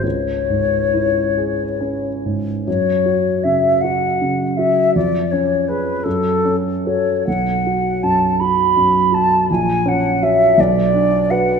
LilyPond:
<<
  \new Staff \with { instrumentName = "Flute" } { \time 6/8 \key cis \minor \tempo 4. = 53 cis''2~ cis''8 r8 | \key fis \minor cis''4 e''8 fis''4 e''8 | d''8 cis''8 b'8 a'4 cis''8 | fis''4 a''8 b''4 a''8 |
gis''8 fis''8 e''8 d''4 fis''8 | }
  \new Staff \with { instrumentName = "Grand piano" } { \time 6/8 \key cis \minor cis,8 gis,8 e'8 gis'8 cis'8 gis,8 | \key fis \minor fis,8 fis'8 cis8 fis'8 cis8 fis'8 | eis,8 cis'8 gis'8 fis,8 cis'8 <fis' a'>8 | b,,8 fis'8 fis,8 fis'8 fis,8 fis'8 |
ais,,8 cis'8 <fis' cis''>8 b,,8 d'8 <fis' b'>8 | }
>>